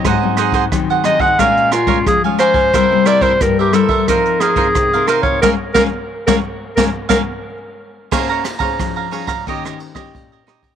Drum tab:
CC |----------------|----------------|----------------|x---------------|
RD |----------------|----------------|----------------|--xxx-xxx-xxx-xx|
HH |x-x-xxx-xxxxxxx-|x-xxx-x-xxxxxxx-|----------------|----------------|
SD |r-r-r-r-r-r-r-r-|r-r-r-r-r-r-r-r-|o-o--o--o-o-----|r-r-r--r-r-r--r-|
BD |o--oo--oo--oo--o|o--oo--oo--oo--o|o-o--o--o-o-----|o--oo--oo--oo--o|